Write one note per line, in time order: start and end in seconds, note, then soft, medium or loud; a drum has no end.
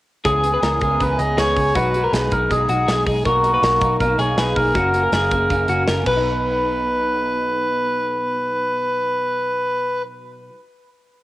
0.25 0.56 C#2 loud
0.25 0.44 C#3 medium
0.25 0.44 E3 medium
0.25 0.44 B3 medium
0.25 0.44 C#4 medium
0.25 1.03 G#4 medium
0.25 0.52 G#4 medium
0.25 0.42 G#4 medium
0.25 kick medium
0.25 closed hi-hat medium
0.43 0.62 B3 soft
0.43 0.63 C#4 soft
0.43 0.63 G#4 medium
0.43 closed hi-hat medium
0.54 0.63 B4 medium
0.62 0.78 C#2 medium
0.62 0.81 E3 medium
0.62 0.82 B3 medium
0.62 0.81 C#4 medium
0.62 0.80 G#4 medium
0.62 1.19 A#4 medium
0.62 snare loud
0.62 closed hi-hat medium
0.81 0.97 C#2 loud
0.81 1.00 B3 soft
0.81 1.01 C#4 medium
0.81 1.00 G#4 medium
0.81 kick medium
0.81 closed hi-hat medium
1.00 1.16 C#2 medium
1.00 1.19 C#3 medium
1.00 1.20 E3 medium
1.00 1.20 B3 medium
1.00 1.18 C#4 medium
1.00 1.17 G#4 medium
1.00 1.20 B4 loud
1.00 kick medium
1.00 closed hi-hat medium
1.18 1.35 C#2 medium
1.18 1.37 B3 soft
1.18 1.38 C#4 soft
1.18 1.38 G#4 medium
1.18 1.37 G#4 medium
1.18 1.38 D#5 medium
1.18 closed hi-hat medium
1.37 1.53 C#2 loud
1.37 1.57 E3 medium
1.37 1.57 B3 medium
1.37 1.57 C#4 medium
1.37 1.73 G#4 medium
1.37 1.55 G#4 medium
1.37 1.77 C#5 loud
1.37 snare loud
1.37 closed hi-hat medium
1.56 1.72 C#2 medium
1.56 1.76 B3 soft
1.56 1.76 C#4 soft
1.56 1.75 G#4 soft
1.56 kick medium
1.56 open hi-hat medium
1.74 2.06 B1 medium
1.74 1.94 B2 medium
1.74 1.94 F#3 medium
1.74 1.94 G#3 medium
1.74 1.92 D#4 medium
1.74 2.02 F#4 medium
1.74 2.34 B4 medium
1.74 kick medium
1.74 closed hi-hat medium
1.94 2.12 F#3 soft
1.94 2.13 G#3 soft
1.94 2.13 D#4 soft
1.94 closed hi-hat medium
2.04 2.13 A#4 medium
2.12 2.28 B1 medium
2.12 2.31 B2 medium
2.12 2.32 F#3 medium
2.12 2.31 G#3 medium
2.12 2.30 D#4 medium
2.12 2.66 G#4 medium
2.12 snare loud
2.12 closed hi-hat medium
2.31 2.47 B1 loud
2.31 2.49 F#3 soft
2.31 2.50 G#3 medium
2.31 2.50 D#4 soft
2.31 2.51 A#4 medium
2.31 kick medium
2.31 closed hi-hat medium
2.50 2.66 B1 medium
2.50 2.69 B2 medium
2.50 2.70 F#3 medium
2.50 2.69 G#3 medium
2.50 2.67 D#4 medium
2.50 3.03 G#4 medium
2.50 kick medium
2.50 closed hi-hat medium
2.69 2.85 B1 medium
2.69 2.87 F#3 soft
2.69 2.88 G#3 medium
2.69 2.88 D#4 medium
2.69 2.88 F#4 medium
2.69 closed hi-hat medium
2.88 3.04 B1 medium
2.88 3.07 B2 medium
2.88 3.07 F#3 medium
2.88 3.07 G#3 medium
2.88 3.06 D#4 medium
2.88 3.05 G#4 medium
2.88 snare loud
2.88 closed hi-hat medium
3.06 3.22 B1 medium
3.06 3.25 F#3 soft
3.06 3.26 G#3 medium
3.06 3.26 D#4 medium
3.06 3.25 G#4 medium
3.06 kick medium
3.06 open hi-hat medium
3.25 3.56 B1 medium
3.25 3.44 B2 medium
3.25 3.45 F#3 medium
3.25 3.44 A#3 medium
3.25 3.43 D#4 medium
3.25 3.97 F#4 medium
3.25 3.52 A#4 medium
3.25 kick medium
3.25 closed hi-hat medium
3.44 3.63 F#3 soft
3.44 3.63 A#3 soft
3.44 3.63 D#4 soft
3.44 closed hi-hat medium
3.54 3.63 B4 medium
3.63 3.78 B1 loud
3.63 3.82 B2 medium
3.63 3.82 F#3 medium
3.63 3.82 A#3 medium
3.63 3.80 D#4 medium
3.63 4.16 A#4 medium
3.63 snare loud
3.63 closed hi-hat medium
3.81 3.97 B1 medium
3.81 4.00 F#3 soft
3.81 4.00 A#3 medium
3.81 4.00 D#4 medium
3.81 kick medium
3.81 closed hi-hat medium
4.00 4.16 B1 loud
4.00 4.19 B2 medium
4.00 4.20 F#3 medium
4.00 4.18 A#3 medium
4.00 4.17 D#4 medium
4.00 4.20 A#4 medium
4.00 kick medium
4.00 closed hi-hat medium
4.18 4.35 B1 loud
4.18 4.37 F#3 soft
4.18 4.37 A#3 soft
4.18 4.38 D#4 medium
4.18 4.37 G#4 medium
4.18 4.39 C#5 medium
4.18 closed hi-hat medium
4.36 4.53 B1 medium
4.36 4.56 B2 medium
4.36 4.57 F#3 medium
4.36 4.56 A#3 medium
4.36 4.55 D#4 medium
4.36 4.73 G#4 medium
4.36 4.58 B4 medium
4.36 snare loud
4.36 closed hi-hat medium
4.56 4.72 B1 loud
4.56 4.74 F#3 soft
4.56 4.75 A#3 soft
4.56 4.75 D#4 soft
4.56 5.83 A#4 medium
4.56 kick medium
4.56 open hi-hat medium
4.75 5.06 F#1 medium
4.75 4.94 F#2 medium
4.75 4.94 C#3 medium
4.75 4.94 F#3 medium
4.75 4.93 A#3 medium
4.75 4.91 C#4 medium
4.75 5.02 F#4 medium
4.75 kick loud
4.75 closed hi-hat medium
4.93 5.12 F#3 soft
4.93 5.13 A#3 soft
4.93 5.12 C#4 medium
4.93 closed hi-hat medium
5.03 5.13 A#4 medium
5.12 5.28 F#1 loud
5.12 5.31 C#3 medium
5.12 5.32 F#3 medium
5.12 5.31 A#3 medium
5.12 5.30 C#4 medium
5.12 5.66 G#4 medium
5.12 snare loud
5.12 closed hi-hat medium
5.31 5.47 F#1 loud
5.31 5.49 F#3 soft
5.31 5.50 A#3 medium
5.31 5.50 C#4 medium
5.31 kick medium
5.31 closed hi-hat medium
5.49 5.66 F#1 loud
5.49 5.69 F#2 medium
5.49 5.69 C#3 medium
5.49 5.69 F#3 medium
5.49 5.69 A#3 medium
5.49 5.67 C#4 loud
5.49 kick medium
5.49 closed hi-hat medium
5.68 5.84 F#1 medium
5.68 5.87 F#3 medium
5.68 5.88 A#3 medium
5.68 5.88 C#4 medium
5.68 5.88 F#4 medium
5.68 closed hi-hat medium
5.87 6.03 F#1 medium
5.87 6.02 C#3 medium
5.87 6.07 F#3 medium
5.87 6.07 A#3 medium
5.87 6.07 C#4 medium
5.87 6.06 A#4 medium
5.87 snare loud
5.87 closed hi-hat medium
6.03 10.48 B1 loud
6.03 10.49 B2 medium
6.03 kick loud
6.03 crash medium
6.07 10.54 F#3 medium
6.07 7.34 B4 medium
6.07 10.02 B4 medium
6.16 10.62 D#4 medium